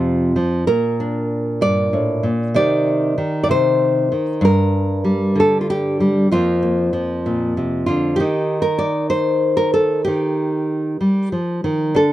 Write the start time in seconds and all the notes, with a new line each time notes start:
Already playing: F2 C3 F3 F4
0.36 F3
0.67 A#2 A#4
1.00 D4
1.61 G2 D5
1.93 A2
2.23 A#2
2.54 C3 D#3 D#4 G4 D5
3.18 D#3
3.43 D5
3.49 C3 C5
4.12 D#3
4.41 G2 A#4
5.04 G3
5.35 D3
5.40 A4
5.61 F4
5.70 G4
6.00 G3
6.31 F2 F3 A#3 C4 F4
6.62 A#3
6.93 F3
7.26 A#2
7.57 C3
7.86 D3 F4
8.16 D#3 G4
8.20 D#4
8.62 A#4
8.78 D5
9.10 C5
9.57 A#4
9.74 A4
10.04 D#3 G4
11.01 G3
11.32 F3
11.64 D#3
11.95 D3 A4